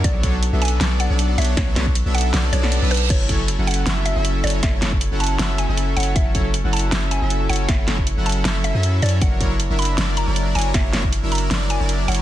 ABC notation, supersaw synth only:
X:1
M:4/4
L:1/16
Q:"Swing 16ths" 1/4=157
K:F#m
V:1 name="Supersaw synth"
[F,B,DAc]2 [F,B,DAc] z2 [F,B,DAe]3 [F,B,DAd]3 [F,B,DAd]3 [F,B,DAc]2 | B,2 [F,B,DAc] z2 [F,B,DAe]3 [F,B,DAd]2 [F,B,DAd]3 [F,B,DAB] z2 | [F,CEAc]2 [F,CEAc] z2 [F,CEAf]3 [F,CEAe]3 [F,CEAe]3 [F,CEAc]2 | z2 [F,CEAc] z2 [F,CEAf]3 [F,CEAe]3 [F,CEAe]3 [F,CEAc]2 |
z2 [F,CEAc] z2 [F,CEAf]3 [F,CEAe]3 [F,CEAe]3 [F,CEAc]2 | [F,CEAc]2 [F,CEAc] z2 [F,CEAf]3 [F,CEAe]3 [F,CEAe]3 [F,CEAc]2 | [D^Ac]2 [F,DEAc] z2 [F,DEAe]3 [DEAd]3 [F,DEAd]3 [F,DEAc]2 | [^Ac]2 [F,DEAc] z2 [F,DEAe]3 [F,DEAd]3 [F,DEAd]3 [F,DEAc]2 |]